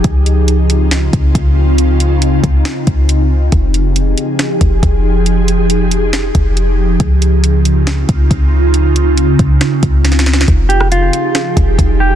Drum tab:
HH |x-----x-----x-----x-----x-----x-----x-----------|x-----x-----x-----x-----x-----x-----x-----------|x-----x-----x-----x-----x-----x-----x-----------|x-----x-----x-----x-----x-----x-----x-----------|
SD |------------------------o-----------------------|------------------------o-----------------------|------------------------o-----------------------|------------------------o-----------------------|
BD |o-----------------------------o-----o-----------|------------------o-----------o-----------------|o-----------------------------o-----o-----------|------------------------------o-----------------|

HH |x-----x-----x-----x-----x-----x-----x-----------|x-----x-----x-----x-----x-----x-----x-----------|x-----x-----x-----x-----x-----x-----x-----------|
SD |------------------------o-----------------------|------------------------o-----------o-o-o-o-o-o-|---------r--------------o-----------------------|
BD |o-----------------------------o-----o-----------|------------------o-----------o-----------------|o-----------------------------o-----o-----------|